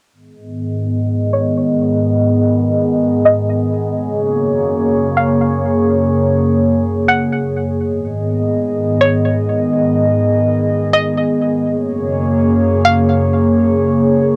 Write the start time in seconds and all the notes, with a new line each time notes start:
0.13 G#2 D#3 B3 G#4 D#5
1.33 C#5
3.25 D#5
3.97 F#2 C#3 A#3 C#5
5.17 F5
7.08 F#5
7.81 G#2 D#3 B3 D#5
9.01 C#5
10.93 D#5
11.65 F#2 C#3 A#3 G#4 C#5
12.85 F5